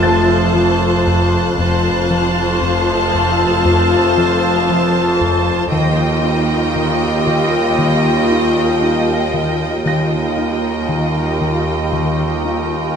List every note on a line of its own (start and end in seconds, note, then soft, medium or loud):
0.00 1.57 F1 medium
0.00 1.56 F2 medium
0.00 1.58 F2 medium
0.00 1.54 A3 medium
0.00 1.54 F4 medium
0.00 1.57 F4 medium
0.00 1.57 A4 medium
0.00 1.54 C5 medium
0.00 1.57 C5 medium
0.00 1.54 A5 medium
0.00 3.09 A5 soft
0.00 5.16 C6 soft
0.00 3.51 F#6 soft
0.00 3.09 A6 medium
0.04 0.35 F3 medium
0.56 0.86 F3 medium
1.07 1.38 F2 medium
1.57 5.68 F1 medium
1.57 5.68 F2 medium
1.57 1.90 F2 medium
1.57 5.69 F2 medium
1.57 5.55 A3 medium
1.57 5.68 F4 medium
1.57 5.55 F4 medium
1.57 5.68 F4 medium
1.57 5.68 A4 medium
1.57 5.68 C5 medium
1.57 5.68 A5 medium
2.11 2.41 F3 medium
2.62 2.93 F2 medium
3.14 3.45 F2 soft
3.51 5.17 F6 soft
3.65 3.96 F2 medium
4.18 4.48 F3 medium
4.70 5.00 F3 medium
5.21 5.52 F2 medium
5.71 9.84 D#2 medium
5.71 9.82 D#2 medium
5.71 6.03 D#3 medium
5.71 9.82 G3 medium
5.71 9.82 F4 medium
5.71 9.84 G4 medium
5.71 9.84 A#4 medium
5.71 9.82 D#5 medium
5.71 9.82 F5 medium
5.71 9.82 G5 medium
6.24 6.55 D#4 soft
6.76 7.07 D#3 medium
7.27 7.58 D#3 soft
7.79 8.10 D#3 medium
8.31 8.62 D#4 soft
8.82 9.13 D#4 medium
9.34 9.65 D#3 soft
9.85 12.96 D#2 medium
9.85 12.96 D#2 soft
9.85 10.17 D#3 medium
9.85 12.96 G3 soft
9.85 12.96 F4 soft
9.85 12.96 G4 soft
9.85 12.96 A#4 soft
9.85 12.96 D#5 soft
9.85 12.96 F5 soft
9.85 12.96 G5 soft
9.85 12.93 A#6 soft
10.38 10.69 D#4 soft
10.89 11.20 D#3 medium
11.41 11.72 D#3 soft
11.93 12.24 D#3 medium
12.45 12.76 D#4 soft